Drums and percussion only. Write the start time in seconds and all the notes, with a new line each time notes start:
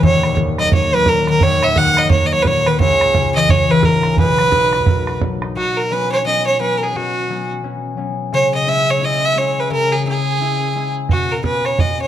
0.03 bodhran
0.14 bodhran
0.23 bodhran
0.37 bodhran
0.47 bodhran
0.58 bodhran
0.65 bodhran
0.72 bodhran
0.83 bodhran
1.06 bodhran
1.27 bodhran
1.41 bodhran
1.52 bodhran
1.63 bodhran
1.76 bodhran
1.87 bodhran
1.97 bodhran
2.04 bodhran
2.10 bodhran
2.21 bodhran
2.45 bodhran
2.66 bodhran
2.80 bodhran
2.90 bodhran
3.01 bodhran
3.15 bodhran
3.25 bodhran
3.42 bodhran
3.49 bodhran
3.59 bodhran
3.83 bodhran
4.03 bodhran
4.17 bodhran
4.28 bodhran
4.39 bodhran
4.52 bodhran
4.73 bodhran
4.80 bodhran
4.86 bodhran
4.97 bodhran
5.07 bodhran
5.21 bodhran
5.42 bodhran
11.09 bodhran
11.44 bodhran
11.65 bodhran
11.79 bodhran